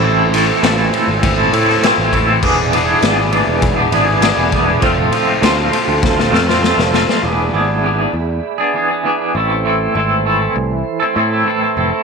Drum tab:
CC |----------------|x---------------|----------------|----------------|
RD |--x-x-x-x-x-x-x-|--x-x-x-x-x-x-x-|x-x-x-x---------|----------------|
SD |----o------oo---|----o-------o---|----o---oooooooo|----------------|
BD |--------o-----o-|o-------o-----o-|o-------o-------|----------------|

CC |----------------|
RD |----------------|
SD |----------------|
BD |----------------|